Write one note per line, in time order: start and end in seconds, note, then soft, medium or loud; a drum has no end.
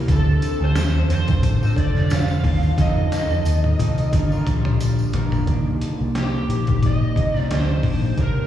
0.00 4.09 C4 medium
0.07 0.35 D2 loud
0.07 0.60 D3 medium
0.07 2.75 D3 medium
0.07 0.60 C4 medium
0.07 0.60 F4 medium
0.07 2.75 F4 medium
0.07 4.09 A4 medium
0.07 0.59 A4 medium
0.07 kick loud
0.07 closed hi-hat medium
0.07 tambourine medium
0.12 0.64 A4 medium
0.42 closed hi-hat medium
0.42 tambourine medium
0.60 0.72 D2 loud
0.60 1.09 C4 medium
0.60 1.09 F4 medium
0.60 1.09 A4 medium
0.60 1.08 C5 medium
0.75 1.02 D#2 loud
0.75 snare loud
0.75 closed hi-hat medium
0.75 tambourine medium
1.09 1.36 F2 loud
1.09 1.61 D3 medium
1.09 1.62 C4 medium
1.09 1.61 F4 medium
1.09 1.60 A4 medium
1.09 closed hi-hat medium
1.09 tambourine medium
1.13 1.75 C5 loud
1.28 kick loud
1.28 closed hi-hat soft
1.28 tambourine soft
1.43 1.70 A1 loud
1.43 kick loud
1.43 closed hi-hat loud
1.43 tambourine soft
1.61 2.43 D3 medium
1.61 2.44 C4 medium
1.61 2.45 F4 medium
1.61 2.44 A4 medium
1.61 tambourine soft
1.76 2.45 F1 medium
1.76 2.13 D5 loud
1.76 kick medium
1.76 closed hi-hat medium
1.95 snare soft
2.10 snare loud
2.10 closed hi-hat loud
2.10 tambourine medium
2.14 2.76 F5 loud
2.29 tambourine medium
2.44 2.71 D#2 medium
2.44 2.78 D3 medium
2.44 2.77 C4 medium
2.44 2.79 F4 loud
2.44 2.79 A4 loud
2.44 kick medium
2.44 open hi-hat medium
2.63 tambourine soft
2.77 3.05 F2 loud
2.77 4.11 D#3 medium
2.77 3.30 F3 medium
2.77 3.31 C4 medium
2.77 3.31 D#4 loud
2.77 5.45 F4 medium
2.77 3.29 A4 loud
2.77 4.10 D#5 loud
2.77 kick loud
2.77 snare medium
2.77 closed hi-hat loud
2.77 tambourine medium
3.12 snare medium
3.12 closed hi-hat medium
3.12 tambourine medium
3.30 3.42 F2 loud
3.30 3.78 C4 soft
3.30 3.79 D#4 soft
3.30 3.79 A4 medium
3.30 tambourine soft
3.45 3.72 D#2 loud
3.45 closed hi-hat loud
3.45 tambourine medium
3.64 high tom medium
3.79 4.06 C2 medium
3.79 4.13 F3 medium
3.79 4.13 C4 medium
3.79 4.14 D#4 medium
3.79 4.14 A4 medium
3.79 closed hi-hat medium
3.79 high tom medium
3.79 tambourine medium
3.98 closed hi-hat soft
3.98 tambourine soft
4.13 4.40 G1 loud
4.13 5.47 D3 medium
4.13 4.32 G3 medium
4.13 5.47 A#3 medium
4.13 4.32 D4 medium
4.13 4.32 F4 medium
4.13 5.46 G4 medium
4.13 4.31 A#4 medium
4.13 kick medium
4.13 closed hi-hat medium
4.13 tambourine soft
4.32 5.14 G3 medium
4.32 5.15 D4 medium
4.32 5.15 F4 medium
4.32 5.16 A#4 medium
4.32 tambourine soft
4.47 5.01 A#1 loud
4.47 closed hi-hat medium
4.47 mid tom medium
4.65 mid tom medium
4.80 closed hi-hat medium
4.80 tambourine medium
4.98 tambourine soft
5.13 5.41 A#1 medium
5.13 5.47 G3 loud
5.13 5.48 D4 loud
5.13 5.49 F4 loud
5.13 5.49 A#4 loud
5.13 closed hi-hat medium
5.13 floor tom loud
5.32 floor tom loud
5.32 tambourine soft
5.47 5.75 C2 medium
5.47 6.47 C3 medium
5.47 6.48 D#3 medium
5.47 6.50 A#3 medium
5.47 8.47 A#3 medium
5.47 8.47 C4 medium
5.47 6.51 D4 medium
5.47 8.47 G4 medium
5.47 8.47 C5 medium
5.47 kick medium
5.47 closed hi-hat medium
5.81 closed hi-hat medium
6.01 6.40 C2 medium
6.15 6.86 G4 medium
6.15 snare loud
6.15 closed hi-hat medium
6.48 7.03 A#1 medium
6.48 7.15 C3 soft
6.48 7.16 D#3 medium
6.48 7.18 A#3 soft
6.48 closed hi-hat medium
6.67 kick medium
6.67 closed hi-hat soft
6.83 7.34 D#5 loud
6.83 kick medium
6.83 closed hi-hat medium
7.16 7.51 C2 medium
7.16 7.48 C3 medium
7.16 7.51 D#3 medium
7.16 7.50 A#3 medium
7.16 kick medium
7.16 closed hi-hat medium
7.34 7.54 D5 loud
7.34 snare soft
7.49 7.78 D2 medium
7.49 7.82 C3 medium
7.49 7.83 A#3 medium
7.49 7.84 D4 medium
7.49 8.21 C5 medium
7.49 snare loud
7.49 closed hi-hat medium
7.83 8.11 A#1 medium
7.83 8.16 C3 medium
7.83 8.17 D#3 medium
7.83 8.17 A#3 medium
7.83 8.18 D4 medium
7.83 kick medium
7.83 open hi-hat soft
8.17 8.45 C2 medium
8.17 8.47 C3 medium
8.17 8.47 D#3 medium
8.17 8.47 A#3 medium
8.17 8.47 D4 medium
8.17 8.47 A#4 medium
8.17 kick medium
8.17 closed hi-hat medium